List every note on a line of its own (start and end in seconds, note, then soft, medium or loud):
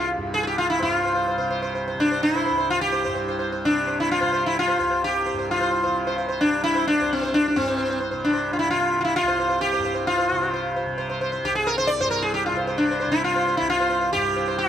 0.00 2.51 C2 medium
0.00 0.17 G2 medium
0.00 1.37 C3 medium
0.17 0.82 G2 medium
0.34 0.42 G#4 loud
0.43 0.46 G#4 medium
0.47 0.58 G4 medium
0.58 0.69 F4 medium
0.70 0.82 E4 medium
0.80 3.07 G2 medium
0.80 1.48 F4 medium
0.80 1.02 C5 soft
1.05 1.14 C5 soft
1.15 1.26 C5 soft
1.28 1.37 C5 soft
1.37 1.94 C3 medium
1.37 1.49 C5 soft
1.50 1.61 C5 soft
1.62 1.74 C5 soft
1.75 1.86 C5 soft
1.88 2.09 C5 soft
1.94 3.65 C3 medium
2.00 2.22 D4 medium
2.11 2.33 C5 soft
2.23 2.70 E4 loud
2.36 2.45 C5 soft
2.46 2.56 C5 soft
2.51 4.78 C2 medium
2.57 2.79 C5 soft
2.70 2.80 F4 loud
2.81 3.47 G4 loud
2.92 3.03 C5 soft
3.05 5.32 G2 medium
3.05 3.14 C5 soft
3.15 3.27 C5 soft
3.28 3.38 C5 soft
3.39 3.51 C5 soft
3.52 3.73 C5 soft
3.65 4.22 C3 medium
3.65 4.00 D4 medium
3.87 4.08 C5 soft
4.00 4.10 E4 medium
4.11 4.46 F4 medium
4.21 5.87 C3 medium
4.21 4.31 C5 soft
4.33 4.54 C5 soft
4.46 4.57 E4 medium
4.59 5.04 F4 loud
4.68 4.78 C5 soft
4.79 7.00 C2 medium
4.79 4.89 C5 soft
4.90 5.12 C5 soft
5.04 5.51 G4 loud
5.26 5.37 C5 soft
5.33 7.56 G2 medium
5.39 5.59 C5 soft
5.51 6.15 F4 medium
5.61 5.70 C5 soft
5.71 5.82 C5 soft
5.83 6.45 C3 medium
5.83 6.05 C5 soft
6.07 6.17 C5 soft
6.18 6.27 C5 soft
6.28 6.50 C5 soft
6.41 8.13 C3 medium
6.41 6.63 D4 medium
6.64 6.87 E4 loud
6.75 6.96 C5 soft
6.88 7.11 D4 loud
7.01 9.23 C2 medium
7.01 7.21 C5 soft
7.13 7.35 C4 medium
7.23 7.43 C5 soft
7.34 7.47 D4 loud
7.48 7.55 D4 medium
7.56 9.78 G2 medium
7.56 7.99 C4 medium
7.68 7.77 C5 soft
7.78 7.89 C5 soft
7.90 7.99 C5 soft
8.00 8.10 C5 soft
8.11 8.69 C3 medium
8.11 8.32 C5 soft
8.24 8.53 D4 medium
8.33 8.56 C5 soft
8.53 8.58 F4 medium
8.59 8.70 E4 medium
8.69 10.32 C3 medium
8.69 8.99 F4 medium
9.01 9.16 E4 medium
9.01 9.04 F4 medium
9.16 9.61 F4 loud
9.23 11.42 C2 medium
9.28 9.38 C5 soft
9.39 9.48 C5 soft
9.49 9.71 C5 soft
9.61 10.07 G4 loud
9.73 9.83 C5 soft
9.78 11.99 G2 medium
9.85 9.93 C5 soft
9.94 10.16 C5 soft
10.07 10.72 F4 loud
10.18 10.28 C5 soft
10.29 10.86 C3 medium
10.29 10.40 C5 soft
10.41 10.52 C5 soft
10.54 10.74 C5 soft
10.76 10.97 C5 soft
10.86 12.53 C3 medium
10.98 11.08 C5 soft
11.09 11.20 C5 soft
11.21 11.31 C5 soft
11.32 11.53 C5 soft
11.43 13.60 C2 medium
11.43 11.55 G4 loud
11.55 11.67 G#4 medium
11.67 11.77 A#4 loud
11.78 11.90 C5 medium
11.87 12.00 D5 loud
11.99 14.15 G2 medium
11.99 12.10 C5 loud
12.11 12.22 A#4 loud
12.22 12.33 G#4 medium
12.34 12.45 G4 medium
12.46 12.56 F4 medium
12.53 13.06 C3 medium
12.53 12.66 C5 soft
12.67 12.89 C5 soft
12.78 13.11 D4 medium
12.91 12.99 C5 soft
13.00 13.22 C5 soft
13.06 14.69 C3 medium
13.12 13.24 E4 medium
13.24 13.57 F4 medium
13.36 13.46 C5 soft
13.47 13.68 C5 soft
13.57 14.69 C2 medium
13.57 13.69 E4 medium
13.70 14.12 F4 loud
13.80 13.88 C5 soft
13.90 14.00 C5 soft
14.01 14.23 C5 soft
14.13 14.69 G2 medium
14.13 14.58 G4 loud
14.36 14.46 C5 soft
14.48 14.69 C5 soft
14.58 14.69 F4 medium